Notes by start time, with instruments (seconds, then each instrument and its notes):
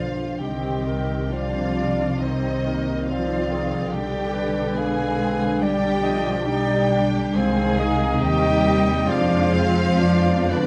Already playing: double bass section B1, harp G2 D3 G3 D4 B4, viola section D3 B3, cello section F3, violin section F4 F5, clarinet C5, flute D5
0.15 harp G3
0.39 double bass section C2, harp C3, viola section D#3 C4, french horn section D#3 C4, cello section G3, clarinet G4, violin section G4 G5, flute D#5
0.64 harp C4
0.87 harp G3, clarinet A#4
1.09 harp D#4
1.31 cello section F3, viola section G3 D4, violin section F4 F5, harp C5, clarinet C5, flute D5
1.52 harp D#4
1.75 harp C4, clarinet D5
1.97 harp G3
2.20 harp C3, cello section D#3, viola section G3 C4, violin section D#4 D#5, clarinet C5, flute C5
2.42 harp C4
2.64 harp G3, viola section A#3, clarinet A#4
2.86 harp D#4
3.07 viola section F3 C4, cello section F3, violin section F4 F5, harp C5, clarinet C5, flute D5
3.28 harp D#4
3.50 viola section D#3, harp C4, clarinet G#4
3.72 harp G3
3.89 double bass section B1, french horn section D3 D4, viola section D3 D4, violin section G4 G5
3.93 harp B2, cello section G3, clarinet G4, flute D5
4.13 harp B3
4.32 harp G3, clarinet B4
4.54 harp D4
4.74 cello section G#3, viola section B3, violin section G#4 G#5, harp D5, flute F5
4.97 harp D4
5.18 harp B3, viola section C4
5.39 harp G3
5.60 harp B2, viola section G3 D4, cello section G3, violin section G4 G5, clarinet D5, flute D5
5.82 harp B3
6.02 viola section F3, harp G3, clarinet D#5
6.26 harp D4
6.46 viola section G3 D#4, cello section G3, violin section G4 G5, clarinet D5, harp D5, flute D5
6.69 harp D4
6.89 harp B3, viola section D4
7.14 harp G3
7.35 double bass section C2, harp C3, viola section D#3 C4, french horn section D#3 C4, cello section G#3, violin section G#4 G#5, clarinet C5, flute F5
7.57 harp G3
7.78 harp C4, viola section D#4, clarinet D#5
7.99 harp D#4
8.20 double bass section D#2, viola section D#3, cello section G3, violin section G4 G5, harp C5, flute D#5
8.42 harp D#4
8.63 harp G3, viola section G3
8.86 harp C4
9.07 double bass section F2, harp F3, cello section F3, viola section G#3 D4, french horn section G#3, violin section F4 F5, flute C5, clarinet D5
9.31 harp F4
9.53 harp C4, viola section C4, clarinet C5
9.77 harp G#4
9.99 double bass section F2, viola section F3 D4, harp F3, clarinet D5
10.04 french horn section B3
10.26 harp B3
10.49 cello section D3, violin section D4 D5, harp D4, clarinet B4, flute B4